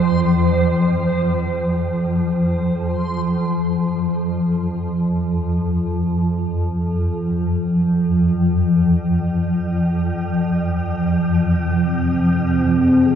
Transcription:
Already playing: F2 F3 C4 G#4 C5
1.83 F2 F3
10.49 C4
11.81 G#4
13.11 F5

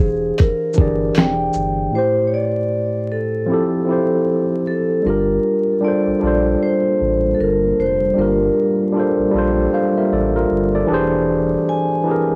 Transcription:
Already playing: E3 D4 G4 G#4 C5 F5
0.00 E1
0.38 A#4, kick, closed hi-hat
0.74 E3 D4, shaker
0.78 G1 G4 G#4 D5, kick
1.15 E1 G5, snare, closed hi-hat
1.19 finger snap
1.53 G1, shaker
1.91 A2 A3 E4
1.95 G4 C5
2.27 C#5
2.34 D5
3.12 A4
3.46 F3 C4 E4
3.52 G4 A4
3.85 F3 C4 E4
3.91 G4 C5
4.67 A4
5.02 G1 G3 A#3 D4 F4 A5
5.07 G4 A#4
5.80 G3 D4 F4 D5
5.86 A4 C5
6.07 A#1
6.20 A#1 G3 D4 F4
6.25 A4 C5
6.62 C5
7.01 A1
7.35 A4
7.40 G1 A#4
7.79 F1 C5
8.14 G1 G3 D4 F4
8.18 G4 A#4
8.92 G3 D4 F4
8.98 A4 C5
9.18 A#1
9.31 A#1 G3 D4 F4
9.37 A4 C5
9.74 C5 F5
9.97 A#4 E5
10.12 A1 A4 D5
10.36 F4 A#4
10.51 G1
10.75 A4 D5
10.87 E1 E3 G#3 C4 D4 E4 G4
10.92 G#4 C5
11.69 G#5
12.04 E3 D4 G4
12.09 G#4 A#4
12.30 E1

